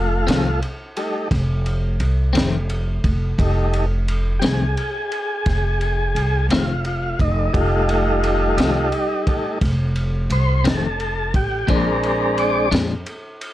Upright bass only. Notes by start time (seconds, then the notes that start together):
Already playing: F1
0.28 C2
1.31 F1
2.00 C2
2.35 F1
3.04 F1
3.38 F1
4.42 C2
5.46 F1
6.15 C2
6.49 F1
7.19 F1
7.54 F1
8.57 C2
9.61 F1
10.30 C2
10.64 F1
11.34 A1
11.68 A#1
12.72 F2